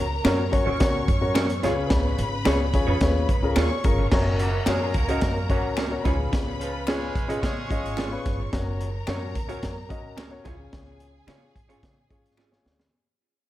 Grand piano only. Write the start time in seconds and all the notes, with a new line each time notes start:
0.24 C#4 F#4 A#4 C#5
0.52 C#4 F#4 A#4 C#5
0.79 C#4 F#4 A#4 C#5
1.21 C#4 F#4 A#4 C#5
1.63 C#3 C#4 F4 G#4 C#5
2.45 C#4 F4 G#4 C#5
2.73 C#4 F4 G#4 C#5
3.02 C#4 F4 G#4 C#5
3.42 C#4 F4 G#4 A#4
3.84 C#4 F4 G#4 A#4
4.12 C#4 F#4 A#4 C#5
4.67 C#4 F#4 A#4 C#5
5.08 C#4 F#4 A#4 D#5
5.49 C#4 F#4 A#4 C#5
5.90 C#4 F#4 A#4 C#5
6.04 C#3 C#4 D#4 G#4 C#5
6.11 F4
6.87 C#4 F4 G#4 C#5
7.28 C#4 F4 G#4 D#5
7.69 C#4 F4 G#4 D#5
8.11 C#4 F4 G#4 B4
8.53 C#4 F#4 A#4 C#5
9.07 C#4 F#4 A#4 C#5
9.48 C#4 F#4 A#4 C#5
9.89 C#4 F#4 A#4 D#5
10.30 C#4 F#4 A#4 C#5
10.44 C#3 C#4 E4 G#4 C#5
10.51 F4
11.27 C#4 F4 G#4 C#5
11.69 C#4 F4 G#4 C#5
12.09 C#4 F4 G#4 C#5
12.51 C#4 F4 G#4 C#5